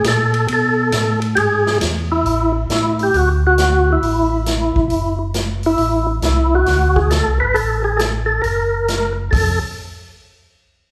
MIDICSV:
0, 0, Header, 1, 4, 480
1, 0, Start_track
1, 0, Tempo, 442478
1, 522, Time_signature, 4, 2, 24, 8
1, 11837, End_track
2, 0, Start_track
2, 0, Title_t, "Tonewheel organ"
2, 0, Program_c, 0, 16
2, 85, Note_on_c, 0, 69, 99
2, 512, Note_off_c, 0, 69, 0
2, 572, Note_on_c, 0, 69, 96
2, 1301, Note_off_c, 0, 69, 0
2, 1467, Note_on_c, 0, 67, 81
2, 1488, Note_on_c, 0, 68, 103
2, 1501, Note_off_c, 0, 67, 0
2, 1933, Note_off_c, 0, 68, 0
2, 2296, Note_on_c, 0, 64, 105
2, 2735, Note_off_c, 0, 64, 0
2, 2951, Note_on_c, 0, 64, 89
2, 3264, Note_off_c, 0, 64, 0
2, 3287, Note_on_c, 0, 67, 93
2, 3431, Note_off_c, 0, 67, 0
2, 3434, Note_on_c, 0, 66, 97
2, 3570, Note_off_c, 0, 66, 0
2, 3762, Note_on_c, 0, 66, 116
2, 4235, Note_off_c, 0, 66, 0
2, 4258, Note_on_c, 0, 64, 98
2, 5627, Note_off_c, 0, 64, 0
2, 6143, Note_on_c, 0, 64, 122
2, 6580, Note_off_c, 0, 64, 0
2, 6782, Note_on_c, 0, 64, 81
2, 7100, Note_off_c, 0, 64, 0
2, 7107, Note_on_c, 0, 66, 104
2, 7550, Note_on_c, 0, 68, 87
2, 7589, Note_off_c, 0, 66, 0
2, 7708, Note_off_c, 0, 68, 0
2, 7708, Note_on_c, 0, 69, 89
2, 8011, Note_off_c, 0, 69, 0
2, 8029, Note_on_c, 0, 71, 96
2, 8183, Note_on_c, 0, 69, 101
2, 8204, Note_off_c, 0, 71, 0
2, 8488, Note_off_c, 0, 69, 0
2, 8507, Note_on_c, 0, 68, 87
2, 8645, Note_on_c, 0, 69, 90
2, 8683, Note_off_c, 0, 68, 0
2, 8797, Note_off_c, 0, 69, 0
2, 8960, Note_on_c, 0, 69, 90
2, 9131, Note_on_c, 0, 70, 79
2, 9132, Note_off_c, 0, 69, 0
2, 9901, Note_off_c, 0, 70, 0
2, 10097, Note_on_c, 0, 69, 79
2, 10404, Note_off_c, 0, 69, 0
2, 11837, End_track
3, 0, Start_track
3, 0, Title_t, "Tonewheel organ"
3, 0, Program_c, 1, 16
3, 46, Note_on_c, 1, 46, 93
3, 510, Note_off_c, 1, 46, 0
3, 533, Note_on_c, 1, 47, 82
3, 994, Note_off_c, 1, 47, 0
3, 1010, Note_on_c, 1, 45, 93
3, 1472, Note_off_c, 1, 45, 0
3, 1488, Note_on_c, 1, 44, 81
3, 1952, Note_off_c, 1, 44, 0
3, 1973, Note_on_c, 1, 40, 86
3, 2431, Note_on_c, 1, 33, 84
3, 2434, Note_off_c, 1, 40, 0
3, 2884, Note_off_c, 1, 33, 0
3, 2924, Note_on_c, 1, 45, 72
3, 3370, Note_off_c, 1, 45, 0
3, 3406, Note_on_c, 1, 38, 81
3, 4322, Note_off_c, 1, 38, 0
3, 4361, Note_on_c, 1, 33, 83
3, 5117, Note_off_c, 1, 33, 0
3, 5159, Note_on_c, 1, 33, 67
3, 5312, Note_off_c, 1, 33, 0
3, 5321, Note_on_c, 1, 30, 76
3, 6240, Note_off_c, 1, 30, 0
3, 6277, Note_on_c, 1, 33, 85
3, 6727, Note_off_c, 1, 33, 0
3, 6744, Note_on_c, 1, 36, 71
3, 7201, Note_off_c, 1, 36, 0
3, 7239, Note_on_c, 1, 38, 80
3, 7839, Note_off_c, 1, 38, 0
3, 7881, Note_on_c, 1, 36, 59
3, 8032, Note_off_c, 1, 36, 0
3, 8038, Note_on_c, 1, 32, 65
3, 8191, Note_off_c, 1, 32, 0
3, 8196, Note_on_c, 1, 33, 78
3, 9117, Note_off_c, 1, 33, 0
3, 9160, Note_on_c, 1, 30, 77
3, 10079, Note_off_c, 1, 30, 0
3, 10110, Note_on_c, 1, 41, 87
3, 10412, Note_off_c, 1, 41, 0
3, 11837, End_track
4, 0, Start_track
4, 0, Title_t, "Drums"
4, 47, Note_on_c, 9, 44, 53
4, 47, Note_on_c, 9, 51, 66
4, 52, Note_on_c, 9, 38, 70
4, 155, Note_off_c, 9, 44, 0
4, 155, Note_off_c, 9, 51, 0
4, 161, Note_off_c, 9, 38, 0
4, 366, Note_on_c, 9, 51, 47
4, 474, Note_off_c, 9, 51, 0
4, 524, Note_on_c, 9, 51, 65
4, 632, Note_off_c, 9, 51, 0
4, 1000, Note_on_c, 9, 44, 62
4, 1000, Note_on_c, 9, 51, 63
4, 1006, Note_on_c, 9, 38, 68
4, 1109, Note_off_c, 9, 44, 0
4, 1109, Note_off_c, 9, 51, 0
4, 1114, Note_off_c, 9, 38, 0
4, 1320, Note_on_c, 9, 51, 48
4, 1429, Note_off_c, 9, 51, 0
4, 1481, Note_on_c, 9, 51, 59
4, 1589, Note_off_c, 9, 51, 0
4, 1808, Note_on_c, 9, 38, 52
4, 1917, Note_off_c, 9, 38, 0
4, 1963, Note_on_c, 9, 44, 52
4, 1963, Note_on_c, 9, 51, 67
4, 1969, Note_on_c, 9, 38, 69
4, 2072, Note_off_c, 9, 44, 0
4, 2072, Note_off_c, 9, 51, 0
4, 2077, Note_off_c, 9, 38, 0
4, 2447, Note_on_c, 9, 46, 45
4, 2556, Note_off_c, 9, 46, 0
4, 2926, Note_on_c, 9, 42, 51
4, 2932, Note_on_c, 9, 38, 69
4, 3035, Note_off_c, 9, 42, 0
4, 3040, Note_off_c, 9, 38, 0
4, 3244, Note_on_c, 9, 46, 40
4, 3353, Note_off_c, 9, 46, 0
4, 3406, Note_on_c, 9, 46, 47
4, 3514, Note_off_c, 9, 46, 0
4, 3882, Note_on_c, 9, 42, 52
4, 3888, Note_on_c, 9, 38, 67
4, 3991, Note_off_c, 9, 42, 0
4, 3996, Note_off_c, 9, 38, 0
4, 4368, Note_on_c, 9, 46, 45
4, 4476, Note_off_c, 9, 46, 0
4, 4840, Note_on_c, 9, 42, 54
4, 4846, Note_on_c, 9, 38, 64
4, 4949, Note_off_c, 9, 42, 0
4, 4954, Note_off_c, 9, 38, 0
4, 5163, Note_on_c, 9, 36, 54
4, 5272, Note_off_c, 9, 36, 0
4, 5314, Note_on_c, 9, 46, 45
4, 5423, Note_off_c, 9, 46, 0
4, 5794, Note_on_c, 9, 42, 52
4, 5799, Note_on_c, 9, 38, 67
4, 5902, Note_off_c, 9, 42, 0
4, 5907, Note_off_c, 9, 38, 0
4, 6107, Note_on_c, 9, 46, 40
4, 6215, Note_off_c, 9, 46, 0
4, 6268, Note_on_c, 9, 46, 46
4, 6376, Note_off_c, 9, 46, 0
4, 6750, Note_on_c, 9, 42, 51
4, 6755, Note_on_c, 9, 38, 65
4, 6858, Note_off_c, 9, 42, 0
4, 6864, Note_off_c, 9, 38, 0
4, 7227, Note_on_c, 9, 46, 45
4, 7233, Note_on_c, 9, 38, 38
4, 7336, Note_off_c, 9, 46, 0
4, 7341, Note_off_c, 9, 38, 0
4, 7553, Note_on_c, 9, 36, 55
4, 7661, Note_off_c, 9, 36, 0
4, 7708, Note_on_c, 9, 42, 53
4, 7713, Note_on_c, 9, 38, 67
4, 7817, Note_off_c, 9, 42, 0
4, 7822, Note_off_c, 9, 38, 0
4, 8196, Note_on_c, 9, 46, 46
4, 8304, Note_off_c, 9, 46, 0
4, 8670, Note_on_c, 9, 42, 52
4, 8676, Note_on_c, 9, 38, 62
4, 8779, Note_off_c, 9, 42, 0
4, 8784, Note_off_c, 9, 38, 0
4, 9152, Note_on_c, 9, 46, 45
4, 9260, Note_off_c, 9, 46, 0
4, 9635, Note_on_c, 9, 42, 49
4, 9641, Note_on_c, 9, 38, 64
4, 9744, Note_off_c, 9, 42, 0
4, 9749, Note_off_c, 9, 38, 0
4, 10118, Note_on_c, 9, 36, 90
4, 10119, Note_on_c, 9, 46, 79
4, 10227, Note_off_c, 9, 36, 0
4, 10228, Note_off_c, 9, 46, 0
4, 11837, End_track
0, 0, End_of_file